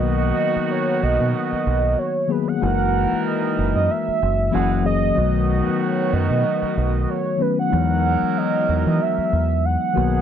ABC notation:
X:1
M:4/4
L:1/16
Q:"Swing 16ths" 1/4=94
K:Cb
V:1 name="Soft synth lead"
^d4 _d2 ^d6 _d2 =B ^f- | ^f4 e3 e _f4 g2 e2- | e4 d2 ^d4 d2 _d2 =B ^f- | ^f4 ^d3 d =e4 f4 |]
V:2 name="Horn section"
[^D,=B,^F]12- [D,B,F]2 z2 | [E,F,B]8- [E,F,B]2 z2 [A,FA]2 z2 | [^D,=B,^F]12- [D,B,F]2 z2 | [^D,^F,B]12 z2 [D,=B,A]2 |]
V:3 name="Tine electric piano"
[^D,^F,^A,=B,^F]4- [D,F,A,B,F] z8 z [D,F,A,B,_A]2 | [F,A,B,EG]6- [F,A,B,EG] z4 z [F,G,B,DG]2 [F,G,B,DA]2 | [^D,^F,=A,=B,^F]6- [D,F,A,B,F] z6 z [D,F,A,B,_D]2 | [=E,^F,=G,^G,=B,^D]6- [E,F,=G,^G,B,D] z6 z [^D,F,^A,B,^F]2 |]
V:4 name="Fingered electric bass" clef=bass
=B,,,2 z4 B,,, =B,, z2 B,,,2 z4 | G,,,3 z3 G,,, G,, z2 G,,,2 G,,,4 | =B,,,3 z3 ^F,, =B,, z2 B,,,2 z4 | =E,,3 z3 E,, =E, z2 E,,3 z =B,,,2 |]